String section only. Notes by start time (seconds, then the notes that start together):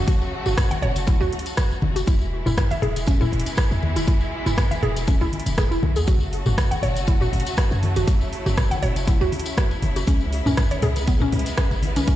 Already playing: C#3 F#3 A3 F#4
2.07 B2 E3 G#3 E4
6.08 C#3 F#3 A3 F#4
8.07 E4
10.08 G#3 B3